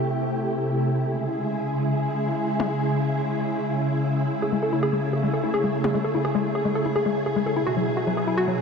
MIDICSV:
0, 0, Header, 1, 4, 480
1, 0, Start_track
1, 0, Key_signature, 3, "major"
1, 0, Tempo, 405405
1, 1278, Time_signature, 4, 2, 24, 8
1, 10201, End_track
2, 0, Start_track
2, 0, Title_t, "Synth arpeggio sound"
2, 0, Program_c, 0, 84
2, 5237, Note_on_c, 0, 68, 71
2, 5281, Note_off_c, 0, 68, 0
2, 5356, Note_on_c, 0, 56, 72
2, 5400, Note_off_c, 0, 56, 0
2, 5476, Note_on_c, 0, 69, 69
2, 5521, Note_off_c, 0, 69, 0
2, 5597, Note_on_c, 0, 64, 78
2, 5706, Note_off_c, 0, 64, 0
2, 5716, Note_on_c, 0, 68, 97
2, 5790, Note_off_c, 0, 68, 0
2, 5835, Note_on_c, 0, 56, 73
2, 5880, Note_off_c, 0, 56, 0
2, 6077, Note_on_c, 0, 68, 77
2, 6121, Note_off_c, 0, 68, 0
2, 6196, Note_on_c, 0, 56, 72
2, 6241, Note_off_c, 0, 56, 0
2, 6317, Note_on_c, 0, 69, 74
2, 6361, Note_off_c, 0, 69, 0
2, 6437, Note_on_c, 0, 64, 74
2, 6547, Note_off_c, 0, 64, 0
2, 6558, Note_on_c, 0, 68, 97
2, 6631, Note_off_c, 0, 68, 0
2, 6678, Note_on_c, 0, 56, 73
2, 6721, Note_off_c, 0, 56, 0
2, 6917, Note_on_c, 0, 68, 73
2, 6961, Note_off_c, 0, 68, 0
2, 7038, Note_on_c, 0, 56, 79
2, 7081, Note_off_c, 0, 56, 0
2, 7157, Note_on_c, 0, 69, 72
2, 7201, Note_off_c, 0, 69, 0
2, 7278, Note_on_c, 0, 64, 71
2, 7387, Note_off_c, 0, 64, 0
2, 7398, Note_on_c, 0, 68, 93
2, 7471, Note_off_c, 0, 68, 0
2, 7518, Note_on_c, 0, 56, 82
2, 7561, Note_off_c, 0, 56, 0
2, 7757, Note_on_c, 0, 68, 75
2, 7801, Note_off_c, 0, 68, 0
2, 7878, Note_on_c, 0, 56, 73
2, 7921, Note_off_c, 0, 56, 0
2, 7998, Note_on_c, 0, 69, 78
2, 8041, Note_off_c, 0, 69, 0
2, 8118, Note_on_c, 0, 64, 74
2, 8227, Note_off_c, 0, 64, 0
2, 8238, Note_on_c, 0, 68, 95
2, 8310, Note_off_c, 0, 68, 0
2, 8358, Note_on_c, 0, 56, 70
2, 8402, Note_off_c, 0, 56, 0
2, 8598, Note_on_c, 0, 68, 73
2, 8642, Note_off_c, 0, 68, 0
2, 8718, Note_on_c, 0, 56, 72
2, 8761, Note_off_c, 0, 56, 0
2, 8838, Note_on_c, 0, 69, 72
2, 8882, Note_off_c, 0, 69, 0
2, 8958, Note_on_c, 0, 64, 79
2, 9067, Note_off_c, 0, 64, 0
2, 9077, Note_on_c, 0, 66, 95
2, 9150, Note_off_c, 0, 66, 0
2, 9197, Note_on_c, 0, 54, 72
2, 9241, Note_off_c, 0, 54, 0
2, 9437, Note_on_c, 0, 66, 81
2, 9481, Note_off_c, 0, 66, 0
2, 9557, Note_on_c, 0, 54, 72
2, 9601, Note_off_c, 0, 54, 0
2, 9677, Note_on_c, 0, 68, 73
2, 9721, Note_off_c, 0, 68, 0
2, 9798, Note_on_c, 0, 64, 71
2, 9907, Note_off_c, 0, 64, 0
2, 9917, Note_on_c, 0, 66, 97
2, 9990, Note_off_c, 0, 66, 0
2, 10037, Note_on_c, 0, 54, 75
2, 10081, Note_off_c, 0, 54, 0
2, 10201, End_track
3, 0, Start_track
3, 0, Title_t, "String machine"
3, 0, Program_c, 1, 50
3, 0, Note_on_c, 1, 48, 73
3, 0, Note_on_c, 1, 57, 67
3, 0, Note_on_c, 1, 64, 67
3, 0, Note_on_c, 1, 67, 82
3, 1237, Note_off_c, 1, 48, 0
3, 1237, Note_off_c, 1, 57, 0
3, 1237, Note_off_c, 1, 67, 0
3, 1276, Note_on_c, 1, 56, 66
3, 1277, Note_on_c, 1, 49, 75
3, 1277, Note_on_c, 1, 68, 81
3, 5078, Note_off_c, 1, 56, 0
3, 5079, Note_off_c, 1, 68, 0
3, 5116, Note_on_c, 1, 57, 70
3, 5117, Note_on_c, 1, 68, 80
3, 8908, Note_off_c, 1, 64, 0
3, 8909, Note_off_c, 1, 49, 0
3, 8918, Note_off_c, 1, 57, 0
3, 8957, Note_on_c, 1, 64, 69
3, 8958, Note_on_c, 1, 47, 75
3, 8958, Note_on_c, 1, 54, 69
3, 10201, Note_off_c, 1, 47, 0
3, 10201, Note_off_c, 1, 54, 0
3, 10201, Note_off_c, 1, 64, 0
3, 10201, Note_off_c, 1, 68, 0
3, 10201, End_track
4, 0, Start_track
4, 0, Title_t, "Drums"
4, 3076, Note_on_c, 9, 48, 80
4, 3194, Note_off_c, 9, 48, 0
4, 6917, Note_on_c, 9, 48, 84
4, 7036, Note_off_c, 9, 48, 0
4, 10201, End_track
0, 0, End_of_file